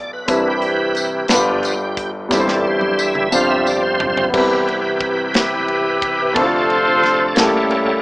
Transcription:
Already playing: B1 B2 B3 E4 F4 G4 A4 D5
0.13 B4
0.26 C2 C3 E3 C4 D4 E4 G4 B4, kick, closed hi-hat, tambourine
0.48 G4
0.62 closed hi-hat
0.95 closed hi-hat, tambourine
1.28 G1 G2 F3 B3 D4 F4 G4, snare, closed hi-hat, tambourine
1.33 B4
1.63 closed hi-hat, tambourine
1.97 kick, closed hi-hat
2.29 G1 G2 E3 G3 C4 E4 G4, kick, snare, tambourine
2.33 A4 B4
2.39 C5
2.48 snare
2.67 C5
2.81 high tom
2.99 E5, tambourine
3.15 mid tom
3.30 G1 G2 F3 C4 D4 F4 G4 C5, tambourine
3.34 F5
3.50 E5
3.67 D5, tambourine
3.83 C5
4.00 floor tom
4.17 floor tom
4.30 C2 C3 B3 C4, kick
4.34 E3 E4 G4 B4, crash
4.68 ride
5.00 kick, ride
5.34 E4 G4 B4, snare, ride
5.68 ride
6.02 kick, ride
6.33 D2 D3 F3 A3 C4 D4 E4 A4 C5, kick, ride
6.38 F4 A4
6.43 F4
6.70 ride
7.03 snare, ride
7.35 A1 A2 G3 A#3 C#4 E4 G4, snare, ride
7.39 C#4 E4 A4
7.71 ride

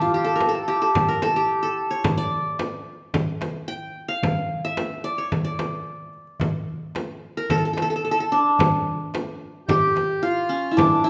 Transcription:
Already playing: G4 A4
0.01 F4, darbuka ka
0.14 G4, darbuka ka
0.24 A4, darbuka ka
0.36 A#4
0.41 darbuka tek, frame drum
0.49 A4
0.55 darbuka ka
0.68 G4, darbuka tek
0.82 A4, darbuka ka
0.95 frame drum, darbuka dum
1.08 A#4, darbuka ka
1.22 A4, darbuka tek, frame drum
1.36 G4
1.50 darbuka ka
1.63 A4
1.77 darbuka ka
1.91 C#5, darbuka ka
2.04 frame drum, darbuka dum
2.18 D5
2.59 darbuka tek, frame drum
3.14 darbuka dum, frame drum
3.27 darbuka ka
3.41 darbuka tek, frame drum
3.68 G5, darbuka ka
3.96 darbuka ka
4.08 F5, darbuka ka
4.23 darbuka dum, frame drum
4.65 E5
4.77 darbuka tek, frame drum
5.04 D5
5.18 C#5
5.32 frame drum, darbuka dum
5.45 D5, darbuka ka
5.59 darbuka tek, frame drum
5.87 darbuka ka
6.13 darbuka ka
6.27 darbuka ka
6.40 darbuka dum, frame drum
6.95 darbuka tek, frame drum
7.37 A#4
7.50 A4, darbuka dum, frame drum
7.58 A4
7.65 A4
7.73 A4, darbuka tek
7.78 frame drum
7.82 A4
7.90 A4, darbuka ka
7.96 A4
8.04 A4, darbuka ka
8.11 A4
8.20 A4
8.32 D4, darbuka ka
8.45 darbuka ka
8.59 darbuka dum, frame drum
8.73 darbuka ka
8.87 darbuka ka
9.00 darbuka ka
9.14 darbuka tek, frame drum
9.28 darbuka ka
9.41 darbuka ka
9.68 G4, darbuka dum, frame drum
9.82 darbuka ka
9.96 darbuka tek, frame drum
10.09 darbuka ka
10.23 F4
10.49 C#4
10.71 E4
10.77 D4, darbuka dum, frame drum
10.92 darbuka ka
11.04 E4, darbuka ka

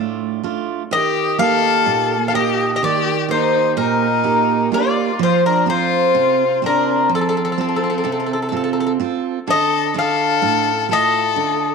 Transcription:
Already playing: A2 A3 D4 F4
0.43 A3 D4 F4
0.91 D#3 G4 D#5
1.38 A#3 D#4 G4 A4 F5
1.86 A#2
2.28 A4 F5
2.33 A#3 D#4 G4 D#5
2.75 G4 D#5
2.83 D#3 G4 D5
3.28 A#3 D#4 G4 C5
3.33 D#4
3.77 A#2 D#4 A#4
4.24 A#3 D#4 G4
4.72 A#3 D#4 F4 G4 D5
5.19 F3 F4 C5
5.46 D4 A#4
5.66 C4 F4 A4 C5
5.71 F4
6.15 C3
6.62 C4 D4 F4 C5
6.66 A#4
7.09 F3
7.15 C4 A4
7.21 A4
7.29 A4
7.37 A4
7.45 A4
7.52 A4
7.58 C4 F4 A4
7.69 A4
7.76 A4
7.84 A4
7.90 A4
7.98 A4
8.04 C3 A4
8.12 A4
8.20 A4
8.26 A4
8.33 A4
8.42 A4
8.49 C4 A4
8.53 F4 A4
8.64 A4
8.73 A4
8.80 A4
8.87 A4
9.00 C4 F4 A4
9.47 D3 A4 D#5
9.94 D4 F4 A4
9.99 F5
10.42 A2
10.89 A3 F4 A4
10.93 D#5
11.36 D3

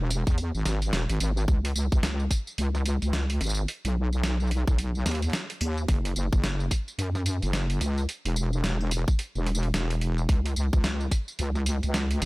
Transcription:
Already playing: E1
0.10 closed hi-hat, tambourine
0.27 E2, kick, closed hi-hat, tambourine
0.38 closed hi-hat, tambourine
0.55 G#1, tambourine
0.65 G#1, snare, closed hi-hat, tambourine
0.82 closed hi-hat, tambourine
0.93 E1, snare, closed hi-hat, tambourine
1.09 G#1, closed hi-hat, tambourine
1.20 G#1, closed hi-hat, tambourine
1.37 tambourine
1.48 C#2, kick, tambourine
1.65 closed hi-hat, tambourine
1.75 C#2, tambourine
1.92 C#2, kick, tambourine
2.03 snare, closed hi-hat, tambourine
2.20 tambourine
2.31 kick, closed hi-hat, tambourine
2.47 tambourine
2.58 C#2, closed hi-hat, tambourine
2.75 snare, tambourine
2.86 closed hi-hat, tambourine
3.02 C#2, closed hi-hat, tambourine
3.13 snare, closed hi-hat, tambourine
3.30 closed hi-hat, tambourine
3.41 G#1, snare, closed hi-hat, tambourine
3.44 tambourine
3.46 tambourine
3.49 tambourine
3.54 tambourine
3.57 tambourine
3.68 closed hi-hat, tambourine
3.85 B1, closed hi-hat, tambourine
4.13 tambourine
4.24 snare, closed hi-hat, tambourine
4.40 tambourine
4.47 closed hi-hat, tambourine
4.57 tambourine
4.67 B1, kick, tambourine
4.78 closed hi-hat, tambourine
4.95 tambourine
5.06 D#2, snare, closed hi-hat, tambourine
5.11 closed hi-hat
5.15 closed hi-hat
5.22 closed hi-hat, tambourine
5.24 closed hi-hat
5.30 snare, closed hi-hat
5.33 closed hi-hat, tambourine
5.50 closed hi-hat, tambourine
5.61 D#2, closed hi-hat, tambourine
5.78 tambourine
5.88 F#1, kick, closed hi-hat, tambourine
6.05 closed hi-hat, tambourine
6.16 F#1, tambourine
6.33 F#1, kick, tambourine
6.44 snare, closed hi-hat, tambourine
6.60 tambourine
6.71 kick, closed hi-hat, tambourine
6.88 tambourine
6.98 F#2, closed hi-hat, tambourine
7.15 snare, tambourine
7.26 closed hi-hat, tambourine
7.42 F#1, closed hi-hat, tambourine
7.53 snare, closed hi-hat, tambourine
7.70 closed hi-hat, tambourine
7.81 C#2, snare, closed hi-hat, tambourine
7.98 tambourine
8.09 closed hi-hat, tambourine
8.25 E1, closed hi-hat, tambourine
8.36 tambourine
8.53 tambourine
8.64 snare, closed hi-hat, tambourine
8.80 tambourine
8.91 closed hi-hat, tambourine
9.08 kick, tambourine
9.19 closed hi-hat, tambourine
9.35 E1, tambourine
9.46 snare, closed hi-hat
9.55 tambourine
9.63 closed hi-hat
9.74 E1, snare, closed hi-hat, tambourine
9.90 closed hi-hat, tambourine
10.01 closed hi-hat
10.18 tambourine
10.29 C#2, kick, closed hi-hat, tambourine
10.46 closed hi-hat, tambourine
10.56 C#2, tambourine
10.73 C#2, kick, tambourine
10.84 snare, closed hi-hat, tambourine
11.00 tambourine
11.11 kick, closed hi-hat, tambourine
11.28 tambourine
11.39 C#2, closed hi-hat, tambourine
11.55 snare, tambourine
11.66 closed hi-hat, tambourine
11.83 C#2, closed hi-hat, tambourine
11.94 snare, closed hi-hat, tambourine
12.11 closed hi-hat, tambourine
12.22 G#1, snare, closed hi-hat, tambourine

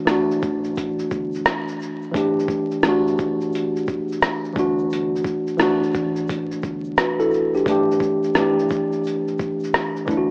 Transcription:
Already playing: E3 A3 D4 F#4
0.05 E3 A3, cross-stick, closed hi-hat, shaker
0.08 D4 F#4, shaker
0.31 shaker
0.41 A1, kick, shaker
0.64 shaker
0.76 kick, closed hi-hat, shaker
0.78 shaker
0.99 shaker
1.10 G1, kick, shaker
1.32 shaker
1.35 shaker
1.45 cross-stick, closed hi-hat, shaker
1.68 shaker
1.80 shaker
1.82 shaker
2.02 shaker
2.11 D1 E3 A3 D4, kick, shaker
2.16 G4, closed hi-hat, shaker
2.39 shaker
2.48 kick, shaker
2.50 shaker
2.71 shaker
2.82 E3, cross-stick, closed hi-hat, shaker
2.84 A3 D4, shaker
2.89 F#4
3.07 shaker
3.18 E1, kick, shaker
3.41 shaker
3.52 closed hi-hat, shaker
3.55 shaker
3.76 shaker
3.86 E1, kick, shaker
3.88 shaker
4.08 shaker
4.12 shaker
4.21 cross-stick, closed hi-hat, shaker
4.44 shaker
4.54 G1 E3 A3 D4, kick, shaker
4.58 F#4, shaker
4.78 shaker
4.90 G1, closed hi-hat, shaker
4.93 shaker
5.16 shaker
5.23 kick, shaker
5.26 shaker
5.47 shaker
5.57 E3 A3, cross-stick, closed hi-hat, shaker
5.61 D4 F#4, shaker
5.83 shaker
5.93 kick, shaker
5.95 A1, shaker
6.16 shaker
6.28 kick, closed hi-hat, shaker
6.30 shaker
6.52 shaker
6.62 G1, kick, shaker
6.64 shaker
6.84 shaker
6.97 F#4 B4, cross-stick, closed hi-hat, shaker
7.20 E4 A4, shaker
7.31 shaker
7.34 shaker
7.54 D4 G4, shaker
7.56 shaker
7.66 D1 E3, kick, closed hi-hat, shaker
7.68 A3 D4 G4, shaker
7.91 shaker
7.99 kick, shaker
8.02 shaker
8.23 shaker
8.34 E3, cross-stick, closed hi-hat, shaker
8.36 A3 D4 G4, shaker
8.59 shaker
8.69 E1, kick, shaker
8.71 shaker
8.92 shaker
9.04 closed hi-hat, shaker
9.07 shaker
9.28 shaker
9.37 E1, kick, shaker
9.40 shaker
9.60 shaker
9.64 shaker
9.73 cross-stick, closed hi-hat, shaker
9.74 shaker
9.96 shaker
10.05 G1 E3 A3 D4, kick, shaker
10.10 E4, shaker
10.17 F#4

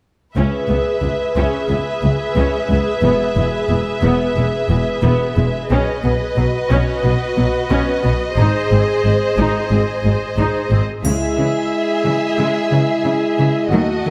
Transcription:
0.35 C#2 C#4 G#4 B4 E5
0.69 C#2 B3
1.02 C#2 G#3
1.36 C#2 C#4
1.69 C#2 B3
2.03 C#2 G#3
2.36 C#2 C#4
2.69 C#2 B3
3.02 E1 E2 B3
3.36 E1 E2 G#3
3.69 E1 E2 E3
4.02 E1 E2 B3
4.36 E1 E2 G#3
4.70 E1 E2 E3
5.03 E1 E2 B3
5.37 E1 E2 G#3
5.70 B1 B2 C#4 B4 D#5
6.03 B1 B2 B3
6.37 B1 B2 F#3 F#4
6.70 B1 B2 C#4
7.03 B1 B2 B3
7.37 B1 B2 F#3
7.70 B1 B2 C#4
8.03 B1 B2 B3
8.37 G#1 G#2 D#4 G#4 C5
8.71 G#1 G#2 C4
9.04 G#1 G#2 G#3
9.37 G#1 G#2 D#4
9.71 G#1 G#2 C4
10.04 G#1 G#2 G#3
10.37 G#1 G#2 D#4
10.71 G#1 G#2 C4
11.04 C#2 C#3 G#3 E4 G#4 E5, triangle
11.37 C#3 E3
12.04 C#3 E3
12.38 C#3 G#3
12.71 C#3 E3
13.05 C#3
13.38 C#3 E3
13.71 D#2 D#3 A3 F#4 D#5
14.05 D#3 F#3

